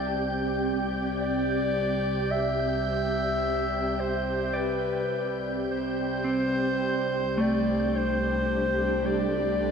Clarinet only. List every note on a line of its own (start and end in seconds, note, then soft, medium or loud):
0.00 0.57 D5 loud
1.21 2.32 D5 loud
2.31 4.01 E5 loud
4.00 4.58 C5 medium
4.57 5.42 B4 medium
5.71 7.42 C5 medium
7.41 7.98 D5 medium
7.96 9.08 C5 medium
9.06 9.71 D5 medium